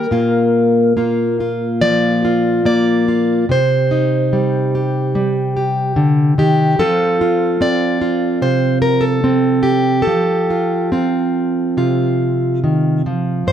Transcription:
0.00 0.11 G3 medium
0.00 2.66 A#4 medium
0.11 3.44 A#2 medium
0.11 0.96 A#3 soft
0.11 0.96 F4 soft
0.97 2.64 A#3 medium
0.97 1.39 F4 soft
1.40 2.24 F4 soft
1.81 3.44 F3 medium
1.81 2.65 D5 loud
2.25 3.07 F4 soft
2.65 3.44 A#3 medium
2.65 3.50 D5 loud
3.08 3.45 F4 soft
3.49 6.75 C3 medium
3.49 6.39 C5 medium
3.91 5.15 D#4 soft
4.33 5.14 G3 medium
4.75 5.55 G4 soft
5.15 5.96 G3 medium
5.57 6.38 G4 soft
5.96 6.38 D3 medium
6.38 6.79 D#3 medium
6.38 6.80 G4 medium
6.79 10.07 F3 medium
6.79 7.60 C4 medium
6.79 7.21 F4 soft
6.79 8.44 A4 loud
7.21 8.01 F4 soft
7.61 9.23 C4 medium
7.61 8.42 D5 loud
8.02 10.50 F4 soft
8.42 10.02 C3 medium
8.42 8.81 C5 loud
8.82 9.04 A#4 medium
9.01 10.01 A4 medium
9.24 10.02 C4 medium
9.63 10.90 G4 medium
10.02 13.46 A4 medium
10.07 12.63 F3 medium
10.50 10.92 F4 soft
10.92 13.44 C4 medium
10.92 11.77 F4 soft
11.77 13.44 C3 medium
11.77 13.44 F4 soft
12.64 13.06 D#3 medium
13.06 13.49 F3 medium
13.47 13.52 G2 medium
13.47 13.52 C5 medium

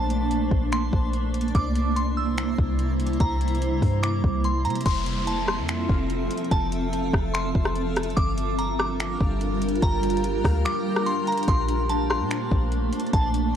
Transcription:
0.00 0.49 A#1 loud
0.00 1.51 A3 medium
0.00 4.82 A#3 medium
0.00 1.51 D4 medium
0.00 4.82 C5 medium
0.00 0.68 A5 loud
0.00 1.51 A5 medium
0.10 closed hi-hat medium
0.31 closed hi-hat medium
0.51 0.91 A#1 loud
0.51 kick loud
0.72 1.11 C6 medium
0.72 finger snap loud
0.72 closed hi-hat medium
0.93 1.52 A#1 loud
0.93 kick loud
1.13 closed hi-hat medium
1.34 closed hi-hat medium
1.41 closed hi-hat medium
1.48 closed hi-hat soft
1.55 2.54 C2 loud
1.55 4.82 C3 medium
1.55 4.82 G3 medium
1.55 4.82 E4 medium
1.55 4.82 A#5 medium
1.55 1.94 D6 loud
1.55 kick loud
1.55 closed hi-hat medium
1.75 closed hi-hat medium
1.96 2.16 C6 medium
1.96 closed hi-hat medium
2.17 3.16 E6 medium
2.38 finger snap loud
2.38 closed hi-hat medium
2.58 3.18 C2 loud
2.58 kick loud
2.79 closed hi-hat medium
3.00 closed hi-hat medium
3.06 closed hi-hat medium
3.13 closed hi-hat soft
3.20 3.80 C2 loud
3.20 3.99 A#5 loud
3.20 kick loud
3.20 closed hi-hat medium
3.41 closed hi-hat medium
3.48 closed hi-hat medium
3.55 closed hi-hat soft
3.62 closed hi-hat medium
3.82 4.22 G2 loud
3.82 kick medium
3.82 open hi-hat medium
4.03 4.42 D6 medium
4.03 finger snap loud
4.03 closed hi-hat medium
4.24 4.67 C2 loud
4.24 kick loud
4.44 4.64 C6 medium
4.44 closed hi-hat medium
4.65 4.85 C3 loud
4.65 4.85 A#5 medium
4.65 closed hi-hat medium
4.70 closed hi-hat medium
4.76 closed hi-hat medium
4.81 closed hi-hat medium
4.86 5.60 F1 loud
4.86 8.13 F3 medium
4.86 8.14 C4 medium
4.86 8.14 F4 medium
4.86 8.13 A4 loud
4.86 8.13 E5 medium
4.86 8.14 E5 medium
4.86 8.14 A5 medium
4.86 5.25 C6 loud
4.86 kick loud
4.86 closed hi-hat medium
4.86 crash loud
4.86 downlifter medium
5.06 closed hi-hat medium
5.27 5.47 A5 medium
5.27 closed hi-hat medium
5.48 6.47 C6 medium
5.48 cross-stick loud
5.58 5.88 F2 loud
5.69 finger snap loud
5.69 closed hi-hat medium
5.89 6.29 F1 loud
5.89 kick loud
6.10 closed hi-hat medium
6.31 closed hi-hat medium
6.38 closed hi-hat medium
6.44 closed hi-hat soft
6.51 7.11 F1 loud
6.51 7.30 A5 loud
6.51 kick loud
6.51 closed hi-hat medium
6.72 closed hi-hat medium
6.93 closed hi-hat medium
7.13 7.53 F1 loud
7.13 kick loud
7.13 cross-stick loud
7.34 7.73 C6 loud
7.34 finger snap loud
7.34 closed hi-hat medium
7.55 8.14 F1 loud
7.55 kick loud
7.65 cross-stick loud
7.75 closed hi-hat medium
7.96 cross-stick loud
7.96 closed hi-hat medium
8.03 closed hi-hat medium
8.10 closed hi-hat soft
8.16 9.16 G1 loud
8.16 11.45 G3 medium
8.16 13.56 D4 medium
8.16 11.45 F4 medium
8.16 11.45 G4 medium
8.16 11.45 A#4 loud
8.16 11.45 F5 medium
8.16 11.45 A#5 medium
8.16 8.56 D6 loud
8.16 kick loud
8.16 closed hi-hat medium
8.38 closed hi-hat medium
8.59 8.78 A#5 medium
8.59 closed hi-hat medium
8.79 9.78 D6 medium
8.79 cross-stick loud
9.00 finger snap loud
9.00 closed hi-hat medium
9.21 9.80 G1 loud
9.21 kick loud
9.41 closed hi-hat medium
9.62 closed hi-hat medium
9.69 closed hi-hat medium
9.75 closed hi-hat soft
9.82 10.42 G1 loud
9.82 10.61 A#5 loud
9.82 kick loud
9.82 closed hi-hat medium
10.03 closed hi-hat medium
10.10 closed hi-hat medium
10.17 closed hi-hat soft
10.24 closed hi-hat medium
10.44 10.64 D2 loud
10.44 kick loud
10.44 cross-stick loud
10.44 open hi-hat medium
10.65 11.04 D6 medium
10.65 finger snap loud
10.65 closed hi-hat medium
10.96 cross-stick loud
11.06 11.26 C6 medium
11.06 closed hi-hat medium
11.27 11.47 A#5 medium
11.27 closed hi-hat medium
11.32 closed hi-hat medium
11.38 closed hi-hat medium
11.43 closed hi-hat medium
11.48 12.22 A#1 loud
11.48 13.56 A3 medium
11.48 13.56 A#3 medium
11.48 13.56 D4 medium
11.48 13.56 C5 medium
11.48 13.56 A5 medium
11.48 11.87 C6 loud
11.48 kick loud
11.48 closed hi-hat medium
11.68 closed hi-hat medium
11.89 12.09 A5 medium
11.89 closed hi-hat medium
12.10 13.09 C6 medium
12.10 cross-stick loud
12.20 12.50 A#2 loud
12.31 finger snap loud
12.31 closed hi-hat medium
12.52 12.91 A#1 loud
12.52 kick loud
12.72 closed hi-hat medium
12.93 closed hi-hat medium
13.00 closed hi-hat medium
13.07 closed hi-hat soft
13.13 13.56 A#1 loud
13.13 13.56 A5 loud
13.13 kick loud
13.13 closed hi-hat medium
13.34 closed hi-hat medium

